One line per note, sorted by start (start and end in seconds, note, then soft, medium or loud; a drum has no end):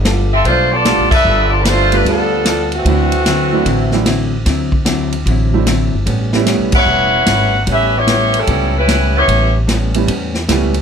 0.00 0.41 G1 medium
0.05 0.32 G3 medium
0.05 0.33 B3 medium
0.05 0.33 F4 medium
0.05 0.33 A4 medium
0.05 snare medium
0.05 hi-hat pedal medium
0.05 ride medium
0.33 0.45 C4 medium
0.33 0.45 F4 medium
0.33 0.45 A4 medium
0.33 0.45 E5 medium
0.44 0.94 B1 medium
0.44 0.72 G3 soft
0.44 0.70 A3 medium
0.44 0.73 B3 soft
0.44 0.70 D4 medium
0.44 0.70 F4 medium
0.44 0.73 F4 soft
0.44 0.74 A4 soft
0.44 0.70 C5 medium
0.44 kick soft
0.44 ride medium
0.72 1.12 B3 medium
0.72 1.12 F4 medium
0.72 1.11 A4 medium
0.72 1.12 D5 loud
0.85 1.13 G3 medium
0.85 1.09 G3 medium
0.85 1.09 A3 soft
0.85 1.13 B3 medium
0.85 1.10 B3 medium
0.85 1.10 D4 medium
0.85 1.13 F4 medium
0.85 1.10 F4 medium
0.85 1.14 A4 medium
0.85 snare medium
0.85 hi-hat pedal medium
0.85 ride medium
0.98 1.11 A1 medium
1.11 1.24 F#1 medium
1.11 1.49 D4 medium
1.11 1.49 A4 medium
1.11 1.49 B4 medium
1.11 1.49 E5 loud
1.11 kick medium
1.11 crash medium
1.25 2.01 G1 medium
1.25 1.53 G3 soft
1.25 1.54 B3 soft
1.25 1.54 F4 soft
1.29 1.55 A4 medium
1.50 1.61 B3 medium
1.50 1.61 F4 medium
1.50 1.61 A4 medium
1.50 1.60 D5 medium
1.62 1.93 G3 medium
1.62 1.66 B4 medium
1.62 snare medium
1.62 hi-hat pedal medium
1.62 ride medium
1.67 1.93 A3 loud
1.67 1.94 B3 medium
1.67 1.93 D4 loud
1.67 1.92 F4 medium
1.67 1.94 F4 medium
1.67 1.94 A4 medium
1.67 1.93 C5 loud
1.92 2.43 G3 medium
1.92 2.43 A3 medium
1.92 2.07 A3 medium
1.92 2.43 B3 medium
1.92 2.44 D4 medium
1.92 2.07 D4 medium
1.92 2.44 F4 medium
1.92 2.06 F4 medium
1.92 2.07 B4 medium
1.92 ride medium
2.04 2.82 D2 medium
2.04 2.33 G3 soft
2.04 2.34 B3 soft
2.04 2.34 F4 soft
2.04 2.34 A4 soft
2.04 kick soft
2.04 ride medium
2.08 2.69 F3 medium
2.08 2.69 B3 medium
2.08 2.69 D4 medium
2.08 2.69 A4 medium
2.45 2.74 G3 medium
2.45 2.74 B3 medium
2.45 2.74 F4 medium
2.45 2.74 A4 medium
2.45 snare medium
2.45 hi-hat pedal medium
2.45 ride medium
2.72 4.30 E3 medium
2.72 4.30 A3 medium
2.72 4.30 C4 medium
2.72 4.30 F#4 medium
2.72 ride soft
2.85 3.62 D2 medium
2.85 3.14 D3 soft
2.85 3.09 F#3 medium
2.85 3.15 F#3 soft
2.85 3.09 A3 medium
2.85 3.10 C4 medium
2.85 3.15 C4 soft
2.85 3.10 D4 medium
2.85 3.10 E4 medium
2.85 kick soft
2.85 ride medium
2.90 3.15 E4 medium
3.12 ride medium
3.26 3.54 D3 medium
3.26 3.54 F#3 medium
3.26 3.55 C4 medium
3.26 3.55 E4 medium
3.26 snare medium
3.26 hi-hat pedal medium
3.26 ride medium
3.53 3.65 F#3 medium
3.53 3.65 A3 medium
3.53 3.65 C4 medium
3.53 3.66 D4 medium
3.53 3.66 E4 medium
3.65 4.42 A1 medium
3.65 3.94 D3 soft
3.65 3.94 F#3 medium
3.65 3.94 C4 soft
3.65 3.95 E4 medium
3.65 kick soft
3.65 ride medium
3.92 4.05 F#3 medium
3.92 4.05 A3 medium
3.92 4.05 C4 medium
3.92 4.06 D4 medium
3.92 4.06 E4 medium
3.92 snare soft
4.06 4.34 D3 medium
4.06 4.34 F#3 medium
4.06 4.34 C4 medium
4.06 4.35 E4 medium
4.06 snare medium
4.06 hi-hat pedal medium
4.06 ride medium
4.45 5.22 D2 loud
4.45 4.74 D3 soft
4.45 4.74 F#3 soft
4.45 4.75 C4 medium
4.45 4.75 E4 medium
4.45 kick soft
4.45 snare soft
4.45 ride medium
4.72 kick medium
4.85 5.14 D3 medium
4.85 5.14 F#3 medium
4.85 5.15 C4 medium
4.85 5.15 E4 medium
4.85 snare medium
4.85 hi-hat pedal medium
4.85 ride medium
5.12 ride medium
5.26 5.89 A1 medium
5.26 5.55 D3 soft
5.26 5.55 F#3 medium
5.26 5.55 C4 soft
5.26 kick soft
5.26 ride medium
5.30 5.56 E4 soft
5.54 5.66 F#3 medium
5.54 5.66 A3 medium
5.54 5.66 C4 medium
5.54 5.67 D4 medium
5.54 5.66 E4 medium
5.66 5.94 D3 medium
5.66 5.95 F#3 medium
5.66 5.95 C4 medium
5.66 5.95 E4 medium
5.66 snare medium
5.66 hi-hat pedal medium
5.66 ride medium
5.93 6.06 G1 medium
6.06 6.56 A1 medium
6.06 6.34 A2 soft
6.06 6.34 G3 medium
6.06 6.35 B3 medium
6.06 6.35 C#4 medium
6.06 kick soft
6.06 ride medium
6.33 6.85 G3 medium
6.33 6.85 A3 medium
6.33 6.86 B3 medium
6.33 6.86 C#4 medium
6.33 6.86 E4 medium
6.33 snare medium
6.46 6.75 A2 medium
6.46 6.75 G3 medium
6.46 6.75 B3 medium
6.46 6.76 C#4 medium
6.46 snare medium
6.46 hi-hat pedal medium
6.46 ride medium
6.60 6.72 B1 medium
6.72 6.85 G#1 medium
6.72 7.65 E4 medium
6.72 7.64 B4 medium
6.72 7.65 C#5 medium
6.72 7.65 F#5 loud
6.72 kick medium
6.72 crash medium
6.86 7.24 E1 medium
6.86 7.15 A2 soft
6.86 7.16 G3 soft
6.90 7.16 B3 soft
6.90 7.17 C#4 soft
7.26 7.65 G#1 medium
7.26 7.55 A2 medium
7.26 7.55 G3 medium
7.26 7.56 B3 medium
7.26 7.56 C#4 medium
7.26 snare medium
7.26 hi-hat pedal medium
7.26 ride medium
7.65 8.44 A1 medium
7.65 7.94 A2 soft
7.65 7.95 G3 soft
7.65 7.96 B3 soft
7.65 7.96 C#4 medium
7.65 kick soft
7.65 ride medium
7.72 7.95 C#4 medium
7.72 7.94 G4 medium
7.72 7.94 B4 medium
7.72 7.95 E5 medium
7.97 8.36 B3 medium
7.97 8.36 E4 medium
7.97 8.36 G4 medium
7.97 8.36 C#5 loud
8.07 8.35 A2 medium
8.07 8.35 G3 medium
8.07 8.36 B3 medium
8.07 8.36 C#4 medium
8.07 snare medium
8.07 hi-hat pedal medium
8.07 ride medium
8.34 ride medium
8.39 8.77 G3 medium
8.39 8.77 C#4 medium
8.39 8.77 E4 medium
8.39 8.77 A4 medium
8.47 9.24 C#2 medium
8.47 8.76 A2 soft
8.47 8.76 G3 soft
8.47 8.77 B3 medium
8.47 8.77 C#4 soft
8.47 kick soft
8.47 ride medium
8.78 9.14 G3 medium
8.78 9.14 C#4 medium
8.78 9.14 E4 medium
8.78 9.14 B4 medium
8.87 9.15 A2 medium
8.87 9.16 G3 medium
8.87 9.16 B3 medium
8.87 9.16 C#4 medium
8.87 snare medium
8.87 hi-hat pedal soft
8.87 ride medium
9.17 9.54 B3 medium
9.17 9.54 E4 medium
9.17 9.53 G4 medium
9.17 9.54 C#5 medium
9.28 10.05 A1 loud
9.28 9.56 A2 soft
9.28 9.57 G3 soft
9.28 9.58 B3 soft
9.28 9.58 C#4 soft
9.28 kick soft
9.28 ride medium
9.67 9.96 A2 medium
9.67 9.96 G3 medium
9.67 9.97 B3 medium
9.67 9.97 C#4 medium
9.67 snare medium
9.67 hi-hat pedal medium
9.67 ride medium
9.94 10.07 G3 medium
9.94 10.08 A3 medium
9.94 10.08 B3 medium
9.94 10.08 C#4 medium
9.94 10.08 E4 medium
9.94 ride medium
10.07 10.46 E2 medium
10.07 10.36 A2 soft
10.07 10.36 G3 medium
10.07 10.37 B3 medium
10.07 10.37 C#4 medium
10.07 kick soft
10.07 ride medium
10.34 snare soft
10.49 10.82 C#2 medium
10.49 10.77 A2 medium
10.49 10.73 G3 medium
10.49 10.77 G3 medium
10.49 10.73 A3 medium
10.49 10.73 B3 medium
10.49 10.77 B3 medium
10.49 10.78 C#4 medium
10.49 10.74 C#4 medium
10.49 10.74 E4 medium
10.49 snare medium
10.49 hi-hat pedal medium
10.49 ride medium
10.74 ride soft